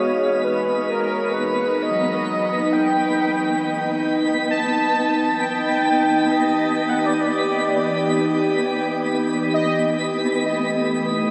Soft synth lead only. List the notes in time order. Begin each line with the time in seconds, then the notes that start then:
Already playing: C#5
0.44 B4
0.90 A#4
1.33 B4
1.82 D#5
2.72 G5
4.50 A5
5.40 G5
6.31 D#5
6.89 F#5
6.99 D#5
7.06 D5
7.14 D#5
7.20 D5
9.54 D#5